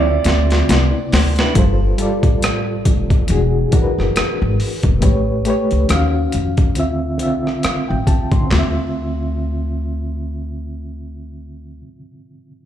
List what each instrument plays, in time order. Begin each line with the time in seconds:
Already playing: upright bass D2, reed electric piano D3 C4 F4 E5, grand piano D5
0.24 upright bass D2, snare, closed hi-hat
0.50 snare, closed hi-hat
0.67 upright bass C2, reed electric piano C3 B3 E4, snare, closed hi-hat
0.72 reed electric piano D5
1.12 upright bass D2, snare, open hi-hat
1.36 clean electric guitar B4, snare, closed hi-hat
1.40 clean electric guitar D4 E4
1.54 upright bass G1, reed electric piano G3 F4 A4, kick, closed hi-hat
1.59 reed electric piano C5
1.98 reed electric piano G3 F4 A4, closed hi-hat
2.02 reed electric piano D5
2.23 upright bass A1, kick, closed hi-hat
2.42 cross-stick, closed hi-hat
2.85 upright bass F1, kick, closed hi-hat
3.10 kick, closed hi-hat
3.27 upright bass E1, reed electric piano E3 D4 F#4, closed hi-hat
3.32 reed electric piano G#4
3.71 reed electric piano E3 D4 F#4, muted upright bass stroke, kick, closed hi-hat
3.76 reed electric piano A#4
3.82 reed electric piano B4
3.98 upright bass F#1, cross-stick
4.16 muted upright bass stroke, cross-stick, closed hi-hat
4.42 upright bass G#1
4.60 open hi-hat
4.83 upright bass E1, kick, closed hi-hat
5.01 upright bass A1, reed electric piano A3 G4 B4, kick, closed hi-hat
5.05 reed electric piano C#5
5.45 reed electric piano A3 G4 B4, closed hi-hat
5.50 reed electric piano C#5
5.71 upright bass C#2, closed hi-hat
5.87 upright bass D#2, reed electric piano D#3 C#4 F#4, cross-stick, closed hi-hat
5.92 reed electric piano F5
6.32 upright bass F2, closed hi-hat
6.57 kick, closed hi-hat
6.75 upright bass D2, reed electric piano D3 C4 F4, closed hi-hat
6.80 reed electric piano E5
7.18 upright bass B1, reed electric piano D3 C4 F4, closed hi-hat
7.23 reed electric piano E5
7.47 cross-stick
7.63 reed electric piano F5, muted upright bass stroke, cross-stick, closed hi-hat
7.89 upright bass A1, reed electric piano G5
8.07 reed electric piano A5, kick, closed hi-hat
8.32 upright bass A1, reed electric piano C6, kick, closed hi-hat
8.41 reed electric piano D3
8.47 reed electric piano C4
8.51 upright bass D2, reed electric piano F4, snare, clap, floor tom
8.59 reed electric piano E5